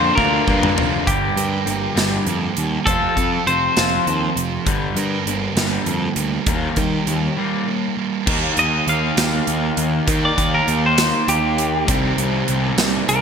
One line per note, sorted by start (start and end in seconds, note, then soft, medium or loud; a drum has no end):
0.00 0.19 D3 medium
0.00 0.18 A#3 medium
0.00 0.17 D4 medium
0.00 0.16 F4 medium
0.00 1.05 A#4 medium
0.00 0.14 C5 medium
0.00 1.05 F5 medium
0.00 1.03 G5 medium
0.00 1.05 D6 medium
0.15 0.40 D2 loud
0.15 0.48 A#3 medium
0.15 0.49 D4 medium
0.15 0.50 F4 medium
0.15 0.79 A#4 medium
0.15 kick medium
0.20 0.79 A#2 medium
0.20 0.46 D3 medium
0.47 0.69 G2 medium
0.47 1.05 D3 medium
0.47 1.06 A#3 medium
0.47 1.06 D4 medium
0.47 1.07 F4 medium
0.47 kick medium
0.63 mid tom medium
0.76 0.98 F1 medium
0.76 1.06 A#3 medium
0.76 1.05 D4 medium
0.76 1.05 F4 medium
0.76 floor tom medium
1.07 1.28 G1 medium
1.07 1.35 G2 medium
1.07 1.35 D3 medium
1.07 1.36 G3 medium
1.07 2.92 G4 medium
1.07 kick medium
1.07 closed hi-hat medium
1.36 1.57 G2 medium
1.36 1.64 G2 soft
1.36 1.64 D3 medium
1.36 2.86 A#4 medium
1.36 closed hi-hat medium
1.66 1.87 G1 medium
1.66 1.93 G2 medium
1.66 1.93 D3 medium
1.66 2.26 A#3 soft
1.66 closed hi-hat medium
1.95 2.17 G1 medium
1.95 2.24 G2 medium
1.95 2.24 D3 medium
1.95 2.24 G3 medium
1.95 snare loud
1.95 closed hi-hat medium
2.26 2.47 F2 medium
2.26 2.53 G2 medium
2.26 2.53 D3 medium
2.26 2.87 A#3 medium
2.26 closed hi-hat soft
2.56 2.77 D#2 medium
2.56 2.86 G3 medium
2.56 closed hi-hat medium
2.86 3.07 F1 medium
2.86 3.14 F3 medium
2.86 3.15 C4 medium
2.86 3.15 F4 medium
2.86 3.47 A4 medium
2.86 kick medium
2.86 closed hi-hat medium
3.17 3.37 F2 medium
3.17 3.44 F3 medium
3.17 3.44 C4 medium
3.17 4.67 A4 medium
3.17 kick medium
3.17 closed hi-hat medium
3.47 3.67 F1 medium
3.47 3.74 F3 medium
3.47 3.74 C4 medium
3.47 4.33 C5 medium
3.47 closed hi-hat soft
3.77 3.97 F1 medium
3.77 4.04 F3 medium
3.77 4.05 C4 medium
3.77 4.05 F4 medium
3.77 snare loud
3.77 closed hi-hat medium
4.05 4.27 D#2 medium
4.05 4.33 F3 medium
4.05 4.33 C4 medium
4.05 closed hi-hat soft
4.36 4.57 F1 medium
4.36 4.67 F3 medium
4.36 closed hi-hat medium
4.66 4.87 G1 medium
4.66 4.94 G2 medium
4.66 4.95 D3 medium
4.66 4.95 G3 medium
4.66 kick medium
4.66 closed hi-hat medium
4.96 5.17 G2 medium
4.96 5.23 G2 medium
4.96 5.24 D3 medium
4.96 6.76 A#4 medium
4.96 closed hi-hat medium
5.26 5.47 G1 medium
5.26 5.54 G2 medium
5.26 5.54 D3 medium
5.26 5.86 A#3 medium
5.26 closed hi-hat medium
5.56 5.76 G1 medium
5.56 5.85 G2 medium
5.56 5.86 D3 medium
5.56 5.86 G3 medium
5.56 snare medium
5.56 closed hi-hat medium
5.86 6.07 F2 medium
5.86 6.14 G2 medium
5.86 6.14 D3 medium
5.86 7.07 A#3 medium
5.86 closed hi-hat medium
6.16 6.37 D2 medium
6.16 7.37 G3 soft
6.16 closed hi-hat medium
6.47 6.68 D#2 medium
6.47 6.75 D#3 medium
6.47 6.76 G3 medium
6.47 6.76 A#3 loud
6.47 kick loud
6.47 closed hi-hat medium
6.76 6.97 D#3 medium
6.76 7.04 D#3 medium
6.76 7.04 G3 medium
6.76 8.27 G4 medium
6.76 kick medium
6.76 closed hi-hat medium
7.07 7.27 D#2 medium
7.07 7.34 D#3 medium
7.07 7.35 G3 medium
7.07 7.66 A#3 medium
7.07 closed hi-hat soft
7.37 7.65 D#3 medium
7.37 7.65 G3 medium
7.37 7.66 A#3 medium
7.67 7.94 D#3 medium
7.67 7.94 G3 medium
7.67 8.26 A#3 medium
7.97 8.26 G3 medium
8.27 8.49 D#2 medium
8.27 10.06 D#3 medium
8.27 10.06 A#3 medium
8.27 10.09 D#4 loud
8.27 10.11 G4 loud
8.27 kick loud
8.27 crash loud
8.57 8.79 D#2 medium
8.57 8.87 D#5 medium
8.57 closed hi-hat medium
8.87 9.10 D#2 medium
8.87 10.20 F5 medium
8.87 closed hi-hat medium
9.17 9.39 D#2 medium
9.17 snare loud
9.17 closed hi-hat medium
9.47 9.70 D#2 medium
9.47 closed hi-hat medium
9.77 10.00 D#2 medium
9.77 closed hi-hat medium
10.07 11.86 D#3 medium
10.07 10.30 D#3 medium
10.07 11.87 A#3 medium
10.07 11.88 D#4 medium
10.07 kick loud
10.07 closed hi-hat medium
10.11 11.90 G4 medium
10.25 10.53 D5 medium
10.38 10.60 D#2 medium
10.38 kick medium
10.38 closed hi-hat medium
10.55 10.83 A#4 medium
10.68 11.12 D#2 medium
10.68 closed hi-hat medium
10.86 11.28 C5 medium
10.98 snare loud
10.98 closed hi-hat medium
11.28 11.88 D#2 medium
11.28 11.87 G4 medium
11.28 closed hi-hat medium
11.58 closed hi-hat medium
11.87 12.11 C2 medium
11.87 13.21 C3 medium
11.87 13.21 D#3 medium
11.87 13.21 G3 medium
11.87 13.21 C4 loud
11.87 13.21 G4 loud
11.87 kick loud
11.87 closed hi-hat medium
12.18 12.41 C2 medium
12.18 closed hi-hat medium
12.48 12.71 C2 medium
12.48 closed hi-hat medium
12.78 13.00 C2 medium
12.78 snare medium
12.78 closed hi-hat medium
13.09 13.21 C2 medium
13.09 13.21 A#4 medium
13.09 closed hi-hat medium